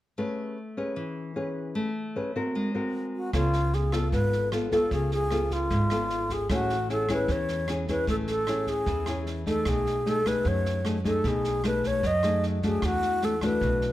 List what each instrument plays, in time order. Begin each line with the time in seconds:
0.18 nylon-string guitar A3 C#4 G#4 B4
0.77 nylon-string guitar C#4 G#4 B4
0.96 nylon-string guitar E3
1.36 nylon-string guitar C#4 G#4 B4
1.75 nylon-string guitar A3
2.16 nylon-string guitar C#4 G#4 B4
2.36 nylon-string guitar C4 F#4 A#4
2.55 nylon-string guitar G#3
2.74 nylon-string guitar C4 F#4 A#4
3.16 alto flute F#4
3.33 upright bass C#2, nylon-string guitar C#3 B3 F4 A4, alto flute F4, kick, cross-stick, snare
3.53 snare
3.73 alto flute G#4, snare
3.92 nylon-string guitar B3 F4 A4, alto flute A4, kick, cross-stick, snare
4.12 upright bass G#1, nylon-string guitar G#2, alto flute B4, kick, snare
4.32 snare
4.52 nylon-string guitar B3 F4 A4, cross-stick, snare
4.72 nylon-string guitar B3 F4 A4, alto flute A4, kick, snare
4.91 upright bass C#2, nylon-string guitar C#3, alto flute G#4, kick, snare
5.11 alto flute G#4, snare
5.31 nylon-string guitar B3 F4 A4, cross-stick, snare
5.51 alto flute F4, kick, snare
5.70 upright bass G#1, nylon-string guitar G#2, kick, snare
5.90 nylon-string guitar B3 F4 A4, cross-stick, snare
6.10 snare
6.30 alto flute G#4, kick, snare
6.49 upright bass A1, nylon-string guitar A3 C#4 E4 G#4, alto flute F#4, kick, cross-stick, snare
6.70 snare
6.89 nylon-string guitar C#4 E4 G#4, alto flute A4, snare
7.09 nylon-string guitar C#4 E4 G#4, kick, cross-stick, snare
7.13 alto flute B4
7.28 upright bass E2, nylon-string guitar E3, alto flute C#5, kick, snare
7.48 snare
7.68 nylon-string guitar C#4 E4 G#4, cross-stick, snare
7.88 nylon-string guitar C#4 E4 G#4, alto flute B4, kick, snare
8.07 upright bass A1, nylon-string guitar A3, alto flute A4, kick, snare
8.27 alto flute A4, snare
8.47 nylon-string guitar C#4 E4 G#4, cross-stick, snare
8.67 alto flute G#4, kick, snare
8.86 upright bass E2, nylon-string guitar E3, kick, snare
9.06 nylon-string guitar C#4 E4 G#4, cross-stick, snare
9.26 snare
9.46 nylon-string guitar A3 D#4 G#4, alto flute A4, kick, snare
9.65 upright bass B1, nylon-string guitar B2, alto flute G#4, kick, cross-stick, snare
9.86 snare
10.06 nylon-string guitar A3 D#4 G#4, alto flute A4, snare
10.25 nylon-string guitar A3 D#4 G#4, alto flute B4, kick, cross-stick, snare
10.45 upright bass F#2, nylon-string guitar F#3, alto flute C#5, kick, snare
10.65 snare
10.85 nylon-string guitar A3 D#4 G#4, cross-stick, snare
11.04 nylon-string guitar A3 D#4 G#4, alto flute A4, kick, snare
11.24 upright bass B1, nylon-string guitar B2, alto flute G#4, kick, snare
11.44 snare
11.64 nylon-string guitar A3 D#4 G#4, alto flute B4, cross-stick, snare
11.83 alto flute C#5, kick, snare
12.03 upright bass F#2, nylon-string guitar F#3, alto flute D#5, kick, snare
12.23 nylon-string guitar A3 D#4 G#4, cross-stick, snare
12.43 snare
12.62 nylon-string guitar A3 D4 F#4, alto flute G#4, kick, snare
12.82 upright bass E2, nylon-string guitar E3, alto flute F#4, kick, cross-stick, snare
13.02 snare
13.22 nylon-string guitar A3 D4 F#4, alto flute A4, snare
13.41 nylon-string guitar A3 D4 F#4, alto flute B4, kick, cross-stick, snare
13.61 upright bass B1, nylon-string guitar B2, kick, snare
13.81 snare